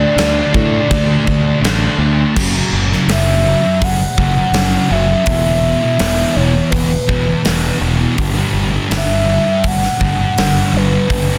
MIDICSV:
0, 0, Header, 1, 6, 480
1, 0, Start_track
1, 0, Tempo, 729040
1, 1554, Time_signature, 4, 2, 24, 8
1, 7494, End_track
2, 0, Start_track
2, 0, Title_t, "Soft synth lead"
2, 0, Program_c, 0, 80
2, 0, Note_on_c, 0, 74, 127
2, 1048, Note_off_c, 0, 74, 0
2, 2051, Note_on_c, 0, 76, 107
2, 2526, Note_on_c, 0, 78, 109
2, 2536, Note_off_c, 0, 76, 0
2, 3238, Note_on_c, 0, 76, 109
2, 3247, Note_off_c, 0, 78, 0
2, 4187, Note_on_c, 0, 73, 89
2, 4197, Note_off_c, 0, 76, 0
2, 4411, Note_off_c, 0, 73, 0
2, 4415, Note_on_c, 0, 71, 83
2, 5117, Note_off_c, 0, 71, 0
2, 5904, Note_on_c, 0, 76, 109
2, 6368, Note_on_c, 0, 78, 112
2, 6378, Note_off_c, 0, 76, 0
2, 7088, Note_on_c, 0, 71, 98
2, 7098, Note_off_c, 0, 78, 0
2, 7494, Note_off_c, 0, 71, 0
2, 7494, End_track
3, 0, Start_track
3, 0, Title_t, "Distorted electric guitar"
3, 0, Program_c, 1, 30
3, 0, Note_on_c, 1, 50, 100
3, 0, Note_on_c, 1, 57, 60
3, 0, Note_on_c, 1, 62, 74
3, 100, Note_off_c, 1, 50, 0
3, 108, Note_on_c, 1, 50, 84
3, 113, Note_off_c, 1, 57, 0
3, 120, Note_on_c, 1, 57, 80
3, 123, Note_off_c, 1, 62, 0
3, 131, Note_on_c, 1, 62, 81
3, 336, Note_off_c, 1, 62, 0
3, 344, Note_on_c, 1, 62, 83
3, 358, Note_off_c, 1, 57, 0
3, 366, Note_on_c, 1, 57, 72
3, 576, Note_off_c, 1, 50, 0
3, 584, Note_on_c, 1, 50, 94
3, 587, Note_off_c, 1, 57, 0
3, 595, Note_on_c, 1, 57, 99
3, 597, Note_off_c, 1, 62, 0
3, 605, Note_on_c, 1, 62, 115
3, 822, Note_off_c, 1, 62, 0
3, 830, Note_on_c, 1, 62, 75
3, 844, Note_off_c, 1, 57, 0
3, 852, Note_on_c, 1, 57, 63
3, 1060, Note_off_c, 1, 50, 0
3, 1068, Note_on_c, 1, 50, 63
3, 1070, Note_off_c, 1, 57, 0
3, 1078, Note_on_c, 1, 57, 72
3, 1084, Note_off_c, 1, 62, 0
3, 1092, Note_on_c, 1, 62, 78
3, 1300, Note_off_c, 1, 62, 0
3, 1308, Note_on_c, 1, 62, 64
3, 1320, Note_off_c, 1, 57, 0
3, 1328, Note_on_c, 1, 57, 62
3, 1537, Note_off_c, 1, 50, 0
3, 1537, Note_off_c, 1, 62, 0
3, 1545, Note_on_c, 1, 42, 90
3, 1547, Note_off_c, 1, 57, 0
3, 1562, Note_on_c, 1, 49, 96
3, 1571, Note_on_c, 1, 54, 108
3, 1670, Note_off_c, 1, 54, 0
3, 1673, Note_on_c, 1, 54, 66
3, 1689, Note_off_c, 1, 49, 0
3, 1697, Note_on_c, 1, 49, 57
3, 1910, Note_off_c, 1, 42, 0
3, 1913, Note_off_c, 1, 54, 0
3, 1916, Note_on_c, 1, 54, 67
3, 1933, Note_off_c, 1, 49, 0
3, 1941, Note_on_c, 1, 49, 52
3, 2035, Note_on_c, 1, 42, 86
3, 2041, Note_off_c, 1, 49, 0
3, 2049, Note_on_c, 1, 49, 84
3, 2052, Note_off_c, 1, 54, 0
3, 2054, Note_on_c, 1, 54, 100
3, 2258, Note_off_c, 1, 42, 0
3, 2266, Note_on_c, 1, 42, 76
3, 2272, Note_off_c, 1, 49, 0
3, 2280, Note_on_c, 1, 49, 80
3, 2290, Note_off_c, 1, 54, 0
3, 2293, Note_on_c, 1, 54, 86
3, 2397, Note_off_c, 1, 49, 0
3, 2397, Note_off_c, 1, 54, 0
3, 2630, Note_off_c, 1, 42, 0
3, 2751, Note_on_c, 1, 42, 78
3, 2765, Note_on_c, 1, 49, 81
3, 2772, Note_on_c, 1, 54, 92
3, 2871, Note_off_c, 1, 54, 0
3, 2873, Note_off_c, 1, 49, 0
3, 2975, Note_off_c, 1, 42, 0
3, 2983, Note_on_c, 1, 42, 80
3, 2997, Note_on_c, 1, 49, 81
3, 3004, Note_on_c, 1, 54, 90
3, 3211, Note_off_c, 1, 42, 0
3, 3219, Note_on_c, 1, 42, 71
3, 3224, Note_off_c, 1, 49, 0
3, 3231, Note_on_c, 1, 49, 74
3, 3238, Note_off_c, 1, 54, 0
3, 3241, Note_on_c, 1, 54, 90
3, 3341, Note_off_c, 1, 54, 0
3, 3344, Note_on_c, 1, 54, 74
3, 3359, Note_off_c, 1, 49, 0
3, 3367, Note_on_c, 1, 49, 63
3, 3452, Note_off_c, 1, 42, 0
3, 3455, Note_on_c, 1, 40, 94
3, 3466, Note_off_c, 1, 49, 0
3, 3469, Note_on_c, 1, 47, 111
3, 3474, Note_off_c, 1, 54, 0
3, 3477, Note_on_c, 1, 52, 106
3, 3575, Note_off_c, 1, 52, 0
3, 3583, Note_on_c, 1, 52, 69
3, 3596, Note_off_c, 1, 47, 0
3, 3604, Note_on_c, 1, 47, 56
3, 3816, Note_off_c, 1, 52, 0
3, 3824, Note_off_c, 1, 40, 0
3, 3824, Note_on_c, 1, 52, 66
3, 3836, Note_off_c, 1, 47, 0
3, 3844, Note_on_c, 1, 47, 54
3, 3935, Note_on_c, 1, 40, 85
3, 3940, Note_off_c, 1, 47, 0
3, 3948, Note_on_c, 1, 47, 106
3, 3949, Note_off_c, 1, 52, 0
3, 3957, Note_on_c, 1, 52, 103
3, 4178, Note_off_c, 1, 40, 0
3, 4186, Note_on_c, 1, 40, 78
3, 4193, Note_off_c, 1, 47, 0
3, 4200, Note_off_c, 1, 52, 0
3, 4201, Note_on_c, 1, 47, 79
3, 4208, Note_on_c, 1, 52, 90
3, 4301, Note_off_c, 1, 52, 0
3, 4306, Note_off_c, 1, 47, 0
3, 4549, Note_off_c, 1, 40, 0
3, 4657, Note_on_c, 1, 40, 86
3, 4668, Note_on_c, 1, 47, 79
3, 4679, Note_on_c, 1, 52, 89
3, 4778, Note_off_c, 1, 52, 0
3, 4783, Note_off_c, 1, 47, 0
3, 4887, Note_off_c, 1, 40, 0
3, 4895, Note_on_c, 1, 40, 84
3, 4906, Note_on_c, 1, 47, 88
3, 4919, Note_on_c, 1, 52, 82
3, 5123, Note_off_c, 1, 40, 0
3, 5130, Note_on_c, 1, 40, 81
3, 5136, Note_off_c, 1, 47, 0
3, 5143, Note_off_c, 1, 52, 0
3, 5143, Note_on_c, 1, 47, 78
3, 5151, Note_on_c, 1, 52, 89
3, 5238, Note_off_c, 1, 52, 0
3, 5246, Note_on_c, 1, 52, 74
3, 5259, Note_off_c, 1, 47, 0
3, 5267, Note_on_c, 1, 47, 66
3, 5365, Note_off_c, 1, 52, 0
3, 5367, Note_off_c, 1, 40, 0
3, 5371, Note_on_c, 1, 43, 82
3, 5375, Note_off_c, 1, 47, 0
3, 5387, Note_on_c, 1, 50, 108
3, 5395, Note_on_c, 1, 55, 102
3, 5492, Note_off_c, 1, 55, 0
3, 5495, Note_on_c, 1, 55, 72
3, 5508, Note_off_c, 1, 50, 0
3, 5516, Note_on_c, 1, 50, 59
3, 5729, Note_off_c, 1, 55, 0
3, 5732, Note_on_c, 1, 55, 69
3, 5747, Note_off_c, 1, 50, 0
3, 5754, Note_on_c, 1, 50, 58
3, 5844, Note_off_c, 1, 43, 0
3, 5847, Note_on_c, 1, 43, 81
3, 5852, Note_off_c, 1, 50, 0
3, 5860, Note_on_c, 1, 50, 99
3, 5870, Note_off_c, 1, 55, 0
3, 5873, Note_on_c, 1, 55, 105
3, 6087, Note_off_c, 1, 43, 0
3, 6090, Note_on_c, 1, 43, 80
3, 6096, Note_off_c, 1, 50, 0
3, 6104, Note_on_c, 1, 50, 85
3, 6108, Note_off_c, 1, 55, 0
3, 6111, Note_on_c, 1, 55, 88
3, 6219, Note_off_c, 1, 55, 0
3, 6224, Note_off_c, 1, 50, 0
3, 6460, Note_off_c, 1, 43, 0
3, 6582, Note_on_c, 1, 43, 70
3, 6594, Note_on_c, 1, 50, 87
3, 6603, Note_on_c, 1, 55, 99
3, 6707, Note_off_c, 1, 50, 0
3, 6709, Note_off_c, 1, 55, 0
3, 6814, Note_off_c, 1, 43, 0
3, 6821, Note_on_c, 1, 43, 83
3, 6835, Note_on_c, 1, 50, 82
3, 6843, Note_on_c, 1, 55, 85
3, 7057, Note_off_c, 1, 43, 0
3, 7065, Note_on_c, 1, 43, 77
3, 7070, Note_off_c, 1, 50, 0
3, 7078, Note_on_c, 1, 50, 82
3, 7083, Note_off_c, 1, 55, 0
3, 7086, Note_on_c, 1, 55, 82
3, 7171, Note_off_c, 1, 55, 0
3, 7179, Note_on_c, 1, 55, 73
3, 7193, Note_off_c, 1, 50, 0
3, 7201, Note_on_c, 1, 50, 56
3, 7289, Note_off_c, 1, 43, 0
3, 7297, Note_on_c, 1, 43, 107
3, 7300, Note_off_c, 1, 50, 0
3, 7308, Note_on_c, 1, 50, 99
3, 7311, Note_off_c, 1, 55, 0
3, 7319, Note_on_c, 1, 55, 110
3, 7406, Note_off_c, 1, 55, 0
3, 7414, Note_on_c, 1, 55, 76
3, 7428, Note_off_c, 1, 50, 0
3, 7436, Note_on_c, 1, 50, 54
3, 7494, Note_off_c, 1, 43, 0
3, 7494, Note_off_c, 1, 50, 0
3, 7494, Note_off_c, 1, 55, 0
3, 7494, End_track
4, 0, Start_track
4, 0, Title_t, "Fingered electric bass"
4, 0, Program_c, 2, 33
4, 106, Note_on_c, 2, 38, 88
4, 269, Note_off_c, 2, 38, 0
4, 362, Note_on_c, 2, 45, 84
4, 519, Note_off_c, 2, 45, 0
4, 597, Note_on_c, 2, 38, 95
4, 756, Note_off_c, 2, 38, 0
4, 834, Note_on_c, 2, 38, 85
4, 994, Note_off_c, 2, 38, 0
4, 1067, Note_on_c, 2, 33, 86
4, 1230, Note_off_c, 2, 33, 0
4, 1305, Note_on_c, 2, 38, 88
4, 1468, Note_off_c, 2, 38, 0
4, 1560, Note_on_c, 2, 30, 84
4, 1708, Note_off_c, 2, 30, 0
4, 1795, Note_on_c, 2, 30, 95
4, 1945, Note_off_c, 2, 30, 0
4, 2025, Note_on_c, 2, 30, 75
4, 2328, Note_off_c, 2, 30, 0
4, 2514, Note_on_c, 2, 30, 98
4, 2664, Note_off_c, 2, 30, 0
4, 2750, Note_on_c, 2, 30, 90
4, 2902, Note_off_c, 2, 30, 0
4, 2977, Note_on_c, 2, 30, 87
4, 3132, Note_off_c, 2, 30, 0
4, 3233, Note_on_c, 2, 30, 90
4, 3384, Note_off_c, 2, 30, 0
4, 3470, Note_on_c, 2, 28, 96
4, 3771, Note_off_c, 2, 28, 0
4, 3952, Note_on_c, 2, 28, 85
4, 4103, Note_off_c, 2, 28, 0
4, 4190, Note_on_c, 2, 28, 84
4, 4341, Note_off_c, 2, 28, 0
4, 4424, Note_on_c, 2, 28, 89
4, 4577, Note_off_c, 2, 28, 0
4, 4666, Note_on_c, 2, 28, 93
4, 4818, Note_off_c, 2, 28, 0
4, 4915, Note_on_c, 2, 28, 85
4, 5065, Note_off_c, 2, 28, 0
4, 5145, Note_on_c, 2, 28, 88
4, 5297, Note_off_c, 2, 28, 0
4, 5392, Note_on_c, 2, 31, 99
4, 5542, Note_off_c, 2, 31, 0
4, 5618, Note_on_c, 2, 31, 91
4, 5773, Note_off_c, 2, 31, 0
4, 5869, Note_on_c, 2, 31, 88
4, 6170, Note_off_c, 2, 31, 0
4, 6349, Note_on_c, 2, 31, 104
4, 6500, Note_off_c, 2, 31, 0
4, 6590, Note_on_c, 2, 31, 101
4, 6740, Note_off_c, 2, 31, 0
4, 6836, Note_on_c, 2, 31, 78
4, 6985, Note_off_c, 2, 31, 0
4, 7066, Note_on_c, 2, 31, 84
4, 7218, Note_off_c, 2, 31, 0
4, 7311, Note_on_c, 2, 31, 95
4, 7494, Note_off_c, 2, 31, 0
4, 7494, End_track
5, 0, Start_track
5, 0, Title_t, "Muted distorted electric guitar strokes"
5, 2399, Note_on_c, 9, 29, 55
5, 2465, Note_off_c, 9, 29, 0
5, 2874, Note_on_c, 9, 29, 50
5, 2940, Note_off_c, 9, 29, 0
5, 4309, Note_on_c, 9, 29, 46
5, 4375, Note_off_c, 9, 29, 0
5, 4786, Note_on_c, 9, 29, 52
5, 4852, Note_off_c, 9, 29, 0
5, 6222, Note_on_c, 9, 29, 50
5, 6288, Note_off_c, 9, 29, 0
5, 6712, Note_on_c, 9, 29, 51
5, 6777, Note_off_c, 9, 29, 0
5, 7494, End_track
6, 0, Start_track
6, 0, Title_t, "Drums"
6, 119, Note_on_c, 9, 49, 59
6, 123, Note_on_c, 9, 38, 108
6, 185, Note_off_c, 9, 49, 0
6, 189, Note_off_c, 9, 38, 0
6, 358, Note_on_c, 9, 36, 84
6, 424, Note_off_c, 9, 36, 0
6, 599, Note_on_c, 9, 36, 99
6, 606, Note_on_c, 9, 49, 55
6, 665, Note_off_c, 9, 36, 0
6, 671, Note_off_c, 9, 49, 0
6, 838, Note_on_c, 9, 36, 89
6, 904, Note_off_c, 9, 36, 0
6, 1082, Note_on_c, 9, 49, 53
6, 1087, Note_on_c, 9, 38, 101
6, 1148, Note_off_c, 9, 49, 0
6, 1152, Note_off_c, 9, 38, 0
6, 1557, Note_on_c, 9, 36, 104
6, 1559, Note_on_c, 9, 57, 108
6, 1623, Note_off_c, 9, 36, 0
6, 1625, Note_off_c, 9, 57, 0
6, 1926, Note_on_c, 9, 38, 30
6, 1991, Note_off_c, 9, 38, 0
6, 2033, Note_on_c, 9, 46, 55
6, 2038, Note_on_c, 9, 38, 111
6, 2099, Note_off_c, 9, 46, 0
6, 2104, Note_off_c, 9, 38, 0
6, 2513, Note_on_c, 9, 36, 107
6, 2513, Note_on_c, 9, 46, 57
6, 2579, Note_off_c, 9, 36, 0
6, 2579, Note_off_c, 9, 46, 0
6, 2751, Note_on_c, 9, 36, 82
6, 2817, Note_off_c, 9, 36, 0
6, 2988, Note_on_c, 9, 46, 52
6, 2992, Note_on_c, 9, 38, 100
6, 3053, Note_off_c, 9, 46, 0
6, 3058, Note_off_c, 9, 38, 0
6, 3462, Note_on_c, 9, 46, 57
6, 3469, Note_on_c, 9, 36, 106
6, 3528, Note_off_c, 9, 46, 0
6, 3535, Note_off_c, 9, 36, 0
6, 3946, Note_on_c, 9, 46, 61
6, 3951, Note_on_c, 9, 38, 107
6, 4012, Note_off_c, 9, 46, 0
6, 4017, Note_off_c, 9, 38, 0
6, 4425, Note_on_c, 9, 46, 51
6, 4427, Note_on_c, 9, 36, 107
6, 4491, Note_off_c, 9, 46, 0
6, 4493, Note_off_c, 9, 36, 0
6, 4668, Note_on_c, 9, 36, 76
6, 4734, Note_off_c, 9, 36, 0
6, 4904, Note_on_c, 9, 46, 50
6, 4909, Note_on_c, 9, 38, 99
6, 4970, Note_off_c, 9, 46, 0
6, 4975, Note_off_c, 9, 38, 0
6, 5386, Note_on_c, 9, 46, 54
6, 5388, Note_on_c, 9, 36, 114
6, 5452, Note_off_c, 9, 46, 0
6, 5454, Note_off_c, 9, 36, 0
6, 5868, Note_on_c, 9, 46, 55
6, 5872, Note_on_c, 9, 38, 110
6, 5934, Note_off_c, 9, 46, 0
6, 5938, Note_off_c, 9, 38, 0
6, 6346, Note_on_c, 9, 46, 57
6, 6348, Note_on_c, 9, 36, 101
6, 6412, Note_off_c, 9, 46, 0
6, 6414, Note_off_c, 9, 36, 0
6, 6474, Note_on_c, 9, 38, 35
6, 6540, Note_off_c, 9, 38, 0
6, 6590, Note_on_c, 9, 36, 75
6, 6656, Note_off_c, 9, 36, 0
6, 6832, Note_on_c, 9, 46, 51
6, 6837, Note_on_c, 9, 38, 96
6, 6898, Note_off_c, 9, 46, 0
6, 6903, Note_off_c, 9, 38, 0
6, 7309, Note_on_c, 9, 36, 112
6, 7311, Note_on_c, 9, 46, 56
6, 7375, Note_off_c, 9, 36, 0
6, 7377, Note_off_c, 9, 46, 0
6, 7494, End_track
0, 0, End_of_file